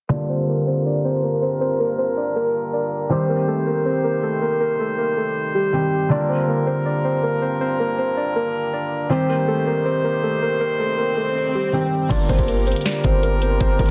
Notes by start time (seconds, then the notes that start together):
0.09 G2 D3 G3 A#3 F4 A#4 D5
0.29 C5
0.48 A#4
0.67 C5
0.86 D5
1.05 C5
1.23 A#4
1.42 C5
1.61 C5
1.79 A#4
1.98 C5
2.17 D5
2.36 A#4
2.73 D5
3.10 C3 D#3 G3 C4 D#4 G4 C5
3.29 A#4
3.48 A4
3.67 A#4
3.85 C5
4.04 A#4
4.23 A4
4.42 A#4
4.61 A#4
4.79 A4
4.98 A#4
5.17 A4
5.55 G4
5.73 D#3 G3 C4 G4
6.09 G2 D3 G3 A#3 F4 A#4 D5
6.29 C5
6.48 A#4
6.67 C5
6.86 D5
7.04 C5
7.23 A#4
7.42 C5
7.61 C5
7.79 A#4
7.98 C5
8.17 D5
8.36 A#4
8.73 D5
9.10 C3 D#3 G3 C4 D#4 G4 C5, swell
9.29 A#4
9.48 A4
9.67 A#4
9.85 C5
10.04 A#4
10.23 A4
10.42 A#4
10.61 A#4
10.79 A4
10.98 A#4
11.17 A4
11.55 G4
11.73 D#3 G3 C4 G4
12.09 G1 D3 G3 A#3 D4 F4 A#4 D5, kick, closed hi-hat, crash
12.29 G1 C5, kick, closed hi-hat
12.39 kick
12.48 A#4, closed hi-hat
12.67 C5, closed hi-hat
12.72 closed hi-hat
12.76 closed hi-hat
12.81 closed hi-hat
12.86 D5, snare, closed hi-hat
13.04 G1 C5, kick, closed hi-hat
13.23 A#4, closed hi-hat
13.42 C5, closed hi-hat
13.61 G1 C5, kick, closed hi-hat
13.79 G1 A#4, kick, closed hi-hat
13.86 closed hi-hat